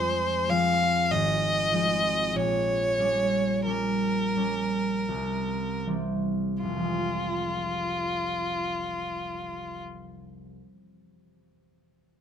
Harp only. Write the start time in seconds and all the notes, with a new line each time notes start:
Already playing: F2 F3 G#3 C4 G#4 C5 F5
0.50 F3 G#3 C4
1.11 G#1
1.72 F3 G#3 C4
2.35 A#1
2.99 G3 C#4
3.66 G3 C#4
4.36 G3 C#4
5.09 C2
5.86 E3 G3 C4
6.63 F1
6.70 C2
6.77 F3
6.84 G#3
6.92 C4
6.98 F4